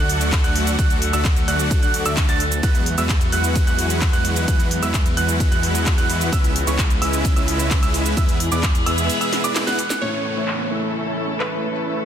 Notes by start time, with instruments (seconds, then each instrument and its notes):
Already playing: detuned saw bass D2, string section D3 F#3 A3 F#4 A4, supersaw synth A3 D4 F#4 D5 F#5, grand piano F#6
0.09 open hi-hat
0.21 closed hi-hat, shaker
0.32 kick, clap, closed hi-hat, ride, shaker
0.44 detuned saw bass D2, supersaw synth A3 D4 F#4 D5 F#5, grand piano F#6, closed hi-hat, shaker
0.56 open hi-hat
0.67 closed hi-hat, shaker
0.79 detuned saw bass D2, supersaw synth A3, grand piano F#6, kick, closed hi-hat, ride, shaker
0.90 closed hi-hat, shaker
1.02 open hi-hat
1.13 detuned saw bass D2, supersaw synth A3 D4 F#4 D5 E5, grand piano E6, closed hi-hat, shaker
1.25 kick, clap, closed hi-hat, ride, shaker
1.36 closed hi-hat, shaker
1.48 detuned saw bass D2, supersaw synth A3 D4 F#4 D5 F#5, grand piano F#6, open hi-hat
1.59 closed hi-hat, shaker
1.71 kick, closed hi-hat, ride, shaker
1.83 detuned saw bass D2, supersaw synth A3 D4 F#4 D5 F#5, grand piano F#6, closed hi-hat, shaker
1.94 open hi-hat
2.06 detuned saw bass D2, supersaw synth A3 D4 F#4 D5 E5, grand piano E6, closed hi-hat, shaker
2.17 kick, clap, closed hi-hat, ride, shaker
2.29 detuned saw bass D2, supersaw synth A3 D4 F#4 D5 A5, grand piano A6, closed hi-hat, shaker
2.40 open hi-hat
2.52 closed hi-hat, shaker
2.63 detuned saw bass E2, string section E3 F#3 G#3 B3 F#4, supersaw synth G#3 E4 F#4 B4 F#5, grand piano F#6, kick, closed hi-hat, ride, shaker
2.75 closed hi-hat, shaker
2.86 open hi-hat
2.98 detuned saw bass E2, supersaw synth G#3 E4 F#4 B4 E5, grand piano E6, closed hi-hat, shaker
3.09 kick, clap, closed hi-hat, ride, shaker
3.21 closed hi-hat, shaker
3.32 detuned saw bass E2, supersaw synth G#3 E4 F#4 B4 F#5, grand piano F#6, open hi-hat
3.44 closed hi-hat, shaker
3.56 kick, closed hi-hat, ride, shaker
3.67 detuned saw bass E2, supersaw synth G#3 E4 F#4 B4 F#5, grand piano F#6, closed hi-hat, shaker
3.79 open hi-hat
3.90 closed hi-hat, shaker
4.02 kick, clap, closed hi-hat, ride, shaker
4.13 detuned saw bass E2, supersaw synth G#3 E4 F#4 B4 F#5, grand piano F#6, closed hi-hat, shaker
4.25 open hi-hat
4.36 closed hi-hat, shaker
4.48 detuned saw bass E2, supersaw synth G#3, string section E4, grand piano F#6, kick, closed hi-hat, ride, shaker
4.60 closed hi-hat, shaker
4.71 open hi-hat
4.83 detuned saw bass E2, supersaw synth G#3 E4 F#4 B4 E5, grand piano E6, closed hi-hat, shaker
4.94 kick, clap, closed hi-hat, ride, shaker
5.06 closed hi-hat, shaker
5.17 detuned saw bass E2, supersaw synth G#3 E4 F#4 B4 F#5, grand piano F#6, open hi-hat
5.29 closed hi-hat, shaker
5.40 kick, closed hi-hat, ride, shaker
5.52 detuned saw bass E2, supersaw synth G#3 E4 F#4 B4 F#5, grand piano F#6, closed hi-hat, shaker
5.63 open hi-hat
5.75 closed hi-hat, shaker
5.86 kick, clap, closed hi-hat, ride, shaker
5.98 detuned saw bass E2, supersaw synth G#3 E4 F#4 B4 F#5, grand piano F#6, closed hi-hat, shaker
6.10 open hi-hat
6.21 closed hi-hat, shaker
6.32 detuned saw bass C#2, string section C#3, supersaw synth G#3 C#4 E4 B4, grand piano E6, kick, closed hi-hat, ride, shaker
6.44 closed hi-hat, shaker
6.56 open hi-hat
6.67 detuned saw bass C#2, supersaw synth G#3 C#4 E4 B4 C#5, grand piano C#6, closed hi-hat, shaker
6.79 kick, clap, closed hi-hat, ride, shaker
6.90 closed hi-hat, shaker
7.02 detuned saw bass C#2, supersaw synth G#3 C#4 E4 B4 E5, grand piano E6, open hi-hat
7.13 closed hi-hat, shaker
7.25 kick, closed hi-hat, ride, shaker
7.36 detuned saw bass C#2, supersaw synth G#3 C#4 E4 B4 E5, grand piano E6, closed hi-hat, shaker
7.48 open hi-hat
7.60 closed hi-hat, shaker
7.71 kick, clap, closed hi-hat, ride, shaker
7.82 detuned saw bass C#2, supersaw synth G#3 C#4 E4 B4 E5, grand piano E6, closed hi-hat, shaker
7.94 open hi-hat
8.06 closed hi-hat, shaker
8.17 detuned saw bass E2, string section B2 G#4, supersaw synth G#3 B3 E4 B4 E5, grand piano E6, kick, closed hi-hat, ride, shaker
8.29 closed hi-hat, shaker
8.40 open hi-hat
8.52 detuned saw bass E2, supersaw synth G#3 B3 E4 B4 D5, grand piano D6, closed hi-hat, shaker
8.63 kick, clap, closed hi-hat, ride, shaker
8.75 closed hi-hat, shaker
8.86 detuned saw bass E2, supersaw synth G#3 B3 E4 B4 E5, grand piano E6, open hi-hat
8.98 closed hi-hat, shaker
9.10 closed hi-hat, ride, shaker
9.21 supersaw synth G#3 B3 E4 B4 E5, grand piano E6, closed hi-hat, shaker
9.33 snare, open hi-hat
9.44 supersaw synth G#3 B3 E4 B4 D5, grand piano D6, closed hi-hat, shaker
9.56 snare, clap, closed hi-hat, ride, shaker
9.67 supersaw synth G#3 B3 E4 B4 F#5, grand piano F#6, snare, closed hi-hat, shaker
9.79 open hi-hat
9.90 snare, open hi-hat, shaker
10.01 grand piano A2 E3 A3 C#4 E4, string section C#3 E3 A3 E4 A4, supersaw synth A3 C#4 E4 C#5 E5, digital synth lead C#5, crash, downlifter
10.36 supersaw synth A3 C#4 E4 C#5 E5
10.48 clap
10.71 supersaw synth A3 C#4 E4 C#5 E5
11.06 supersaw synth A3 C#4 E4 C#5 E5
11.40 digital synth lead B4, clap
11.52 supersaw synth A3 C#4 E4 C#5 E5
11.86 supersaw synth A3 C#4 E4 C#5 E5